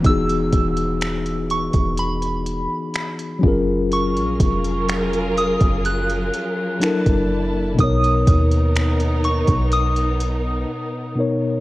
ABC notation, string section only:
X:1
M:4/4
L:1/8
Q:1/4=62
K:Gb
V:1 name="String section"
z8 | [G,FAB]6 [B,=D_F=a]2 | [=B,^D^A]8 |]